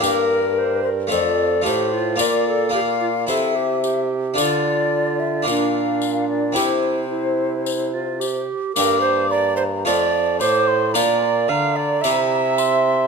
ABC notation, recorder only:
X:1
M:4/4
L:1/8
Q:1/4=110
K:Cmix
V:1 name="Recorder"
B2 c B A2 G F | B A G F A G G2 | F4 D4 | E2 E3 F G2 |
B c d c d2 c2 | d2 f d e4 |]